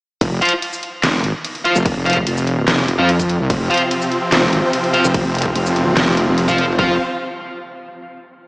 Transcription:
0.21 0.40 F1 loud
0.21 kick loud
0.21 closed hi-hat medium
0.21 crash medium
0.41 0.52 F4 medium
0.41 0.52 C5 medium
0.41 0.52 F5 loud
0.41 closed hi-hat medium
0.45 closed hi-hat medium
0.49 closed hi-hat medium
0.62 closed hi-hat medium
0.62 crash soft
0.73 shaker medium
0.83 closed hi-hat medium
1.03 1.22 F1 loud
1.03 snare loud
1.03 clap medium
1.03 closed hi-hat medium
1.03 crash medium
1.24 1.33 G#1 loud
1.24 closed hi-hat medium
1.45 closed hi-hat medium
1.45 crash soft
1.55 closed hi-hat soft
1.65 1.75 F4 medium
1.65 1.75 C5 medium
1.65 1.75 F5 medium
1.65 closed hi-hat medium
1.76 1.94 F1 loud
1.76 shaker medium
1.86 kick loud
1.86 closed hi-hat medium
1.86 crash medium
1.96 2.25 F1 medium
2.06 2.16 F4 medium
2.06 2.16 C5 medium
2.06 2.16 F5 medium
2.06 closed hi-hat soft
2.10 closed hi-hat medium
2.13 kick medium
2.13 closed hi-hat medium
2.27 2.66 F1 loud
2.27 closed hi-hat medium
2.27 crash soft
2.37 shaker medium
2.47 closed hi-hat medium
2.68 2.87 F1 loud
2.68 snare loud
2.68 clap loud
2.68 closed hi-hat medium
2.68 crash medium
2.88 2.97 F1 medium
2.88 closed hi-hat medium
2.99 3.38 F2 loud
2.99 3.09 F4 medium
2.99 3.09 C5 medium
2.99 3.09 F5 medium
3.09 closed hi-hat medium
3.09 crash soft
3.19 kick medium
3.19 closed hi-hat soft
3.19 shaker medium
3.29 closed hi-hat medium
3.40 3.48 C2 loud
3.50 3.69 F1 loud
3.50 6.75 C3 medium
3.50 6.75 F3 medium
3.50 6.75 C4 medium
3.50 kick loud
3.50 closed hi-hat medium
3.50 crash medium
3.70 3.81 F4 medium
3.70 3.81 C5 medium
3.70 3.81 F5 medium
3.70 closed hi-hat soft
3.74 closed hi-hat medium
3.77 closed hi-hat medium
3.91 closed hi-hat medium
3.91 crash soft
4.02 shaker medium
4.12 closed hi-hat medium
4.32 4.51 F1 medium
4.32 snare loud
4.32 clap medium
4.32 closed hi-hat medium
4.32 crash medium
4.53 4.62 G#1 loud
4.53 closed hi-hat medium
4.73 closed hi-hat medium
4.73 crash soft
4.84 closed hi-hat soft
4.94 5.04 F4 medium
4.94 5.04 C5 medium
4.94 5.04 F5 loud
4.94 closed hi-hat medium
5.04 5.23 F1 medium
5.04 shaker medium
5.14 kick loud
5.14 closed hi-hat medium
5.14 crash medium
5.25 5.54 F1 loud
5.35 closed hi-hat soft
5.38 closed hi-hat medium
5.42 kick medium
5.42 closed hi-hat medium
5.56 5.95 F1 loud
5.56 closed hi-hat medium
5.56 crash soft
5.66 shaker medium
5.76 closed hi-hat medium
5.97 6.26 F1 loud
5.97 snare loud
5.97 clap medium
5.97 closed hi-hat medium
5.97 crash medium
6.17 closed hi-hat medium
6.28 6.47 F1 loud
6.38 closed hi-hat medium
6.38 crash soft
6.48 6.77 F1 loud
6.48 6.64 F4 medium
6.48 6.64 C5 medium
6.48 6.64 F5 loud
6.48 kick medium
6.48 closed hi-hat soft
6.48 shaker medium
6.58 closed hi-hat medium
6.78 6.98 F1 loud
6.78 6.98 F3 medium
6.78 6.98 C4 medium
6.78 6.94 F4 medium
6.78 6.98 C5 medium
6.78 6.94 C5 medium
6.78 6.98 F5 medium
6.78 6.94 F5 medium
6.78 kick loud

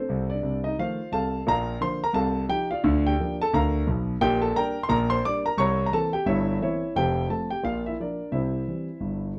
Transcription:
0.00 0.28 C4 medium
0.00 0.28 A4 medium
0.00 0.25 C5 medium
0.09 0.36 C2 medium
0.09 0.36 C3 medium
0.30 0.62 D4 medium
0.30 0.59 D5 medium
0.43 0.70 C2 medium
0.43 0.70 C3 medium
0.64 0.77 D#4 medium
0.64 0.75 D#5 medium
0.78 0.97 D#3 medium
0.78 0.97 F3 medium
0.78 0.97 A3 medium
0.78 1.11 F4 medium
0.78 1.11 C5 medium
0.78 1.08 F5 loud
1.12 1.39 C2 medium
1.12 1.40 C3 medium
1.12 1.45 A4 medium
1.12 1.45 F5 medium
1.12 1.41 A5 loud
1.47 1.76 A#1 medium
1.47 1.76 A#2 loud
1.47 1.80 A#4 medium
1.47 1.80 F5 medium
1.47 1.77 A#5 loud
1.81 2.00 D3 medium
1.81 2.00 F3 medium
1.81 2.00 A#3 medium
1.81 2.01 C5 medium
1.81 1.99 C6 loud
2.04 2.15 A#4 medium
2.04 2.14 A#5 loud
2.13 2.43 C2 loud
2.13 2.43 C3 medium
2.13 2.47 A4 medium
2.13 2.47 F5 medium
2.13 2.44 A5 loud
2.49 2.68 F3 medium
2.49 2.68 D#4 medium
2.49 2.69 G4 medium
2.49 2.67 G5 loud
2.71 3.03 F4 medium
2.71 3.03 D5 medium
2.71 3.00 F5 loud
2.84 3.13 D2 loud
2.84 3.13 D3 loud
3.07 3.38 G4 medium
3.07 3.35 G5 loud
3.20 3.38 F3 medium
3.20 3.38 A#3 medium
3.20 3.39 D4 medium
3.42 3.53 A4 loud
3.42 3.52 A5 loud
3.53 3.82 D2 loud
3.53 3.82 D3 medium
3.53 3.86 A#4 medium
3.53 3.86 F5 medium
3.53 3.83 A#5 loud
3.87 4.15 B1 medium
3.87 4.14 B2 medium
4.21 4.50 A#1 loud
4.21 4.50 A#2 loud
4.21 4.41 G4 loud
4.21 4.39 G5 loud
4.42 4.55 A4 medium
4.42 4.53 A5 loud
4.55 4.74 G3 medium
4.55 4.74 A#3 medium
4.55 4.74 D4 medium
4.55 4.82 A#4 medium
4.55 4.82 G5 medium
4.55 4.79 A#5 loud
4.83 4.90 C6 loud
4.89 5.19 A#1 loud
4.89 5.18 A#2 loud
4.89 5.10 A#4 medium
4.89 5.07 A#5 loud
5.10 5.23 C5 medium
5.10 5.22 C6 loud
5.25 5.43 G3 medium
5.25 5.44 A#3 medium
5.25 5.44 D4 medium
5.25 5.45 D5 medium
5.25 5.43 D6 loud
5.46 5.58 A#4 medium
5.46 5.57 A#5 loud
5.58 5.87 C2 loud
5.58 5.87 C3 loud
5.58 5.85 C#5 loud
5.58 5.85 A#5 loud
5.58 5.82 C#6 loud
5.86 5.93 A#5 loud
5.92 6.11 E3 medium
5.92 6.12 A#3 soft
5.92 6.12 C4 medium
5.92 6.13 A4 medium
5.92 6.11 A5 loud
6.13 6.27 G4 medium
6.13 6.25 G5 loud
6.26 6.56 G1 loud
6.26 6.56 G2 medium
6.26 6.59 E4 medium
6.26 6.60 C#5 medium
6.26 6.56 E5 loud
6.61 6.80 E3 medium
6.61 6.80 A#3 soft
6.61 6.81 C4 medium
6.61 6.94 E4 medium
6.61 6.94 C#5 medium
6.61 6.91 E5 medium
6.96 7.25 F1 medium
6.96 7.25 F2 medium
6.96 7.29 G4 medium
6.96 7.29 C5 medium
6.96 7.26 G5 loud
7.29 7.48 F3 medium
7.29 7.48 A3 medium
7.29 7.49 C4 medium
7.29 7.50 A4 medium
7.29 7.48 A5 medium
7.51 7.64 G4 medium
7.51 7.62 G5 medium
7.63 7.93 A#1 medium
7.63 7.93 A#2 medium
7.63 7.85 F4 medium
7.63 7.82 F5 loud
7.86 7.99 E4 medium
7.86 7.98 E5 medium
8.00 8.19 F3 soft
8.00 8.19 A#3 soft
8.00 8.33 D4 medium
8.00 8.33 A#4 medium
8.00 8.30 D5 medium
8.32 8.62 C2 medium
8.32 8.62 C3 medium
8.32 9.33 E4 medium
8.32 9.33 C5 medium
8.32 9.21 E5 medium
8.68 8.87 E3 soft
8.68 8.87 G3 soft
8.68 8.88 C4 soft
9.00 9.31 G1 medium
9.00 9.31 G2 medium

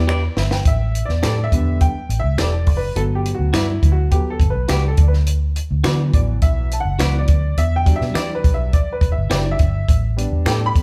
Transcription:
0.00 0.27 E2 loud
0.08 0.21 G4 medium
0.08 0.21 B4 medium
0.08 0.22 D5 medium
0.08 finger snap medium
0.37 0.61 G1 loud
0.37 0.51 E5 medium
0.37 snare medium
0.51 0.79 G5 medium
0.51 snare loud
0.65 1.02 A1 loud
0.65 1.06 E5 loud
0.65 kick loud
0.65 closed hi-hat medium
0.95 closed hi-hat medium
1.05 1.21 E2 medium
1.05 1.44 D5 medium
1.05 snare soft
1.23 1.48 A2 medium
1.23 1.36 G4 medium
1.23 1.36 A4 medium
1.23 1.37 D5 medium
1.23 finger snap medium
1.23 snare loud
1.23 closed hi-hat medium
1.44 1.79 E5 loud
1.52 1.89 E2 medium
1.52 1.91 D3 medium
1.52 1.91 G3 soft
1.52 1.91 B3 medium
1.52 kick medium
1.52 closed hi-hat medium
1.81 2.21 G5 loud
1.81 kick medium
1.81 closed hi-hat medium
2.09 2.22 A1 medium
2.09 closed hi-hat medium
2.20 2.39 E5 loud
2.24 2.36 C#2 medium
2.38 2.67 E1 medium
2.38 2.51 G4 medium
2.38 2.52 A4 medium
2.38 2.78 D5 medium
2.38 2.52 D5 medium
2.38 finger snap medium
2.38 snare loud
2.38 closed hi-hat medium
2.66 2.91 F#1 medium
2.66 kick medium
2.66 open hi-hat soft
2.77 2.97 B4 medium
2.95 3.33 G1 medium
2.95 4.10 F#3 medium
2.95 4.10 A3 soft
2.95 4.10 B3 medium
2.95 3.02 A4 loud
2.95 closed hi-hat medium
3.15 3.33 G4 medium
3.26 closed hi-hat medium
3.35 3.54 F#4 medium
3.39 3.51 D2 medium
3.53 3.78 G2 loud
3.53 3.94 E4 medium
3.53 3.67 F#4 medium
3.53 3.67 B4 medium
3.53 3.67 D5 medium
3.53 finger snap medium
3.53 snare loud
3.53 closed hi-hat medium
3.83 4.19 D2 medium
3.83 kick medium
3.83 closed hi-hat medium
3.92 4.12 F#4 medium
4.11 4.37 F#3 soft
4.11 4.37 A3 soft
4.11 4.37 B3 medium
4.11 4.31 G4 medium
4.11 kick medium
4.11 closed hi-hat medium
4.30 4.50 A4 medium
4.39 4.52 G1 medium
4.39 kick medium
4.39 closed hi-hat medium
4.50 4.70 B4 medium
4.55 4.67 B1 medium
4.68 4.94 C#2 medium
4.68 4.82 F#4 medium
4.68 4.87 G4 medium
4.68 4.83 B4 medium
4.68 4.83 D5 medium
4.68 finger snap medium
4.68 snare loud
4.68 closed hi-hat medium
4.88 5.01 A4 medium
4.97 5.59 D2 loud
4.97 5.08 D5 medium
4.97 kick loud
4.97 closed hi-hat medium
5.08 5.14 B4 medium
5.13 snare soft
5.26 closed hi-hat medium
5.56 closed hi-hat medium
5.71 5.83 D2 medium
5.84 6.09 D3 loud
5.84 6.67 E3 medium
5.84 6.67 F#3 medium
5.84 6.68 B3 medium
5.84 5.97 F#4 medium
5.84 5.98 B4 medium
5.84 5.98 D5 medium
5.84 finger snap loud
5.84 snare loud
5.84 closed hi-hat medium
6.13 6.38 A1 medium
6.13 6.20 D5 medium
6.13 kick medium
6.13 closed hi-hat medium
6.42 6.79 B1 medium
6.42 6.75 E5 loud
6.42 kick medium
6.42 closed hi-hat medium
6.71 6.80 A5 medium
6.71 closed hi-hat medium
6.80 7.20 F#5 loud
6.85 6.97 F#1 loud
6.99 7.24 C#2 loud
6.99 7.25 E3 soft
6.99 7.26 F#3 soft
6.99 7.26 B3 soft
6.99 7.13 F#4 medium
6.99 7.13 B4 medium
6.99 7.13 D5 medium
6.99 finger snap medium
6.99 snare loud
6.99 closed hi-hat medium
7.19 7.59 D5 medium
7.28 7.53 D2 medium
7.28 kick medium
7.28 closed hi-hat medium
7.57 7.94 E2 loud
7.57 7.76 E5 loud
7.57 closed hi-hat medium
7.76 7.96 G5 loud
7.85 8.69 F#3 medium
7.85 8.69 G3 medium
7.85 8.69 D4 medium
7.85 kick medium
7.85 closed hi-hat medium
7.96 8.14 E5 medium
8.01 8.13 B2 medium
8.01 snare soft
8.14 8.40 E3 loud
8.14 8.28 E4 medium
8.14 8.28 G4 medium
8.14 8.35 D5 medium
8.14 8.29 D5 medium
8.14 finger snap loud
8.14 snare loud
8.14 closed hi-hat medium
8.35 8.55 B4 medium
8.44 8.81 B1 medium
8.44 kick medium
8.44 closed hi-hat medium
8.54 8.74 E5 medium
8.73 8.91 D5 medium
8.73 kick medium
8.73 closed hi-hat medium
8.93 9.10 B4 medium
9.01 9.14 E1 medium
9.01 kick medium
9.01 closed hi-hat medium
9.12 9.30 E5 medium
9.17 9.29 G1 medium
9.30 9.55 F#1 loud
9.30 9.56 F#3 soft
9.30 9.57 G3 soft
9.30 9.57 D4 soft
9.30 9.44 E4 medium
9.30 9.44 G4 medium
9.30 9.44 D5 medium
9.30 9.51 D5 medium
9.30 finger snap medium
9.30 snare loud
9.30 closed hi-hat medium
9.51 10.04 E5 loud
9.59 9.84 G1 medium
9.59 kick medium
9.59 closed hi-hat medium
9.88 10.25 A1 loud
9.88 kick loud
9.88 closed hi-hat medium
10.17 10.83 G3 medium
10.17 10.83 B3 medium
10.17 10.83 D4 medium
10.17 closed hi-hat medium
10.32 10.44 E2 medium
10.46 10.70 A2 loud
10.46 10.59 G4 medium
10.46 10.60 A4 medium
10.46 10.60 D5 loud
10.46 10.52 G5 medium
10.46 finger snap loud
10.46 snare loud
10.46 closed hi-hat medium
10.66 10.83 B5 loud
10.75 10.83 E2 medium
10.75 kick medium
10.75 closed hi-hat medium

